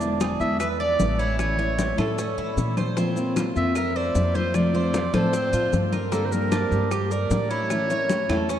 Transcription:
Already playing: upright bass E1, cuban tres D4
0.00 nylon-string guitar D3 G#3 B3 E4, high bongo, high conga, maracas
0.20 cuban tres G#4, high bongo, high conga, claves, maracas
0.40 upright bass E2, nylon-string guitar D3 G#3 B3 E4, clarinet E5, high bongo, high conga, maracas
0.59 cuban tres B4, clarinet E5, muted nylon-string guitar stroke, high bongo, high conga, claves, maracas
0.80 clarinet D5, cuban tres D5, high conga
0.99 upright bass A1, nylon-string guitar D3 G#3 B3 E4, high bongo, low bongo, high conga, maracas
1.19 cuban tres E4, clarinet C#5, high bongo, maracas
1.38 nylon-string guitar E3 A3 C#4 E4, clarinet C#5, high bongo, high conga, claves, maracas
1.58 nylon-string guitar A3 C#4 E4, cuban tres C#5, high bongo, high conga
1.79 high bongo, high conga, maracas
1.97 upright bass A2, nylon-string guitar A3 C#4 E4, cuban tres A4, clarinet A4, high bongo, high conga, claves, maracas
2.17 cuban tres C#4, muted nylon-string guitar stroke, high bongo, high conga, maracas
2.37 upright bass A2, cuban tres E4, high conga
2.57 upright bass A#2, nylon-string guitar E3 A3 C#4 E4, high bongo, low bongo, high conga, maracas
2.77 cuban tres C5, high bongo, high conga, claves, maracas
2.96 nylon-string guitar F3 A#3 C4 F4, cuban tres C4, high bongo, high conga, maracas
3.16 nylon-string guitar A#3 C4 F4, high bongo, high conga, maracas
3.36 cuban tres F4, high bongo, high conga, claves, maracas
3.55 upright bass F2, nylon-string guitar A#3 C4 F4, clarinet E5, high bongo, high conga, maracas
3.75 cuban tres A#4, clarinet E5, muted nylon-string guitar stroke, high bongo, high conga, claves, maracas
3.95 cuban tres C5, clarinet D5, high conga
4.15 upright bass F2, nylon-string guitar F3 A#3 C4 F4, high bongo, low bongo, high conga, maracas
4.35 cuban tres F4, clarinet C5, high bongo, high conga, maracas
4.54 nylon-string guitar C3 F3 A3 C4 F4, clarinet D5, high bongo, high conga, claves, maracas
4.74 nylon-string guitar F3 A3 C4 F4, cuban tres C5, high bongo, high conga
4.94 high bongo, high conga, maracas
5.13 upright bass A2, nylon-string guitar F3 A3 C4 F4, cuban tres A4, clarinet C5, high bongo, high conga, claves, maracas
5.33 cuban tres C4, muted nylon-string guitar stroke, high bongo, high conga, maracas
5.53 upright bass A2, cuban tres F4, high conga, maracas
5.72 upright bass G2, nylon-string guitar F3 A3 C4 F4, high bongo, low bongo, high conga, maracas
5.92 cuban tres A#4, high bongo, high conga, claves, maracas
6.11 nylon-string guitar D3 G3 A#3 D4 G4, cuban tres A#3, clarinet A4, high bongo, high conga, maracas
6.25 clarinet C5
6.31 nylon-string guitar G3 A#3 D4 G4, clarinet A#4, high bongo, high conga, maracas
6.52 cuban tres D4, high bongo, high conga, claves, maracas
6.71 upright bass G2, nylon-string guitar G3 A#3 D4 G4, high bongo, high conga, maracas
6.91 cuban tres G4, clarinet G4, muted nylon-string guitar stroke, high bongo, high conga, claves, maracas
7.11 cuban tres A#4, clarinet D5, high conga, maracas
7.30 upright bass A2, nylon-string guitar G3 D4 G4, high bongo, low bongo, high conga, maracas
7.51 cuban tres E4, clarinet C#5, high bongo, maracas
7.70 nylon-string guitar E3 A3 C#4 E4, high bongo, high conga, claves, maracas
7.90 nylon-string guitar A3 C#4 E4, cuban tres C#5, high bongo, high conga, maracas
8.10 high bongo, high conga, maracas
8.29 upright bass E2, nylon-string guitar A3 C#4 E4, cuban tres A4, high bongo, high conga, claves, maracas
8.49 cuban tres C#4, muted nylon-string guitar stroke, high bongo, high conga, maracas

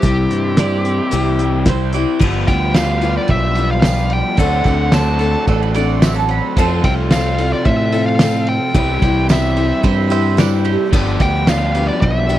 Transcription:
Already playing: overdriven electric guitar G3 C4 E4, lead electric guitar G4, harmonium G4 C5 E5 C6
0.02 fingered electric bass C2, steel-string acoustic guitar C3 G3 C4 E4 G4, kick, closed hi-hat
0.30 fingered electric bass G2, overdriven electric guitar E3, closed hi-hat
0.57 steel-string acoustic guitar G3 C4 E4 G4, mandolin D5, snare, closed hi-hat
0.85 overdriven electric guitar C4, closed hi-hat
1.11 fingered electric bass C2, steel-string acoustic guitar C3 G3 C4 E4 G4, closed hi-hat
1.39 overdriven electric guitar G3, closed hi-hat
1.65 steel-string acoustic guitar G3 C4 E4 G4, mandolin C5, kick, snare, closed hi-hat
1.93 overdriven electric guitar G3, steel-string acoustic guitar C4 E4 G4, mandolin D5, closed hi-hat
2.19 fingered electric bass G1, steel-string acoustic guitar G2 D3 F3 B3 F4 G4, overdriven electric guitar G3, harmonium F4 G4 D5 B5, kick, crash
2.48 fingered electric bass D2, steel-string acoustic guitar F3 B3 F4 G4, lead electric guitar G5, kick, ride
2.74 steel-string acoustic guitar F3 B3 F4 G4, lead electric guitar F5, snare, ride, tambourine
3.01 steel-string acoustic guitar F3 B3 F4 G4, ride
3.17 lead electric guitar D5
3.28 fingered electric bass B1, lead electric guitar E5, kick, ride
3.55 steel-string acoustic guitar F3 B3 F4 G4, ride
3.71 lead electric guitar F5
3.82 steel-string acoustic guitar F3 B3, snare, ride, tambourine
3.86 steel-string acoustic guitar F4 G4
4.10 lead electric guitar G5, ride
4.37 fingered electric bass D2, steel-string acoustic guitar D3 F#3 C4 D4 A4, overdriven electric guitar A3 F#4, harmonium A4 F#5 C6, lead electric guitar F#5, kick, ride
4.64 fingered electric bass D2, steel-string acoustic guitar C4 D4 A4, kick, ride
4.92 steel-string acoustic guitar F#3 C4 D4 A4, lead electric guitar A5, snare, ride, tambourine
5.19 steel-string acoustic guitar D4 A4, ride
5.23 steel-string acoustic guitar C4
5.47 fingered electric bass A1, mandolin A4, kick, ride
5.63 mandolin B4
5.74 steel-string acoustic guitar C4 D4 A4, mandolin D5, ride
6.02 steel-string acoustic guitar F#3 C4 D4, mandolin E5, snare, ride, tambourine
6.06 steel-string acoustic guitar A4
6.16 mandolin A5
6.29 mandolin B5, ride
6.56 overdriven electric guitar F2 C3 A3, fingered electric bass F2, steel-string acoustic guitar F3 C4 F4 A4, harmonium F4 C5, mandolin A5 C6, kick, ride
6.84 fingered electric bass C2, steel-string acoustic guitar C4 F4 A4, lead electric guitar G5, kick, ride
7.10 steel-string acoustic guitar F3 C4 F4, lead electric guitar F5, snare, ride, tambourine
7.15 steel-string acoustic guitar A4
7.38 steel-string acoustic guitar C4 F4 A4, ride
7.53 lead electric guitar D5
7.65 fingered electric bass A2, lead electric guitar E5, kick, ride
7.92 steel-string acoustic guitar C4 F4 A4, ride
8.06 lead electric guitar F5
8.19 steel-string acoustic guitar F3 C4 F4 A4, snare, ride, tambourine
8.47 lead electric guitar G5, ride
8.74 fingered electric bass C2, steel-string acoustic guitar C3 G3 B3 E4 G4, overdriven electric guitar E3 C4, harmonium G4 C5 E5 B5, lead electric guitar G5, kick, ride
9.02 fingered electric bass C2, steel-string acoustic guitar B3 E4 G4, kick, ride
9.29 steel-string acoustic guitar G3 B3 E4 G4, lead electric guitar E5, snare, ride, tambourine
9.57 steel-string acoustic guitar E4 G4, ride
9.83 fingered electric bass G2, mandolin C5 E5, kick, ride
10.10 steel-string acoustic guitar B3 E4 G4, mandolin C5 E5, ride
10.37 steel-string acoustic guitar G3 E4 G4, mandolin B4 D5, snare, ride, tambourine
10.65 mandolin G4, ride
10.93 fingered electric bass G1, steel-string acoustic guitar G2 D3 F3 B3 D4 G4, overdriven electric guitar G3, harmonium F4 D5, kick, crash
11.20 fingered electric bass D2, steel-string acoustic guitar F3 B3 D4 G4, lead electric guitar G5, kick, ride
11.47 steel-string acoustic guitar F3 B3 D4 G4, lead electric guitar F5, snare, ride, tambourine
11.75 steel-string acoustic guitar F3 B3 D4 G4, ride
11.88 lead electric guitar D5
12.01 fingered electric bass B1, lead electric guitar E5, kick, ride
12.29 steel-string acoustic guitar F3 B3 D4 G4, ride

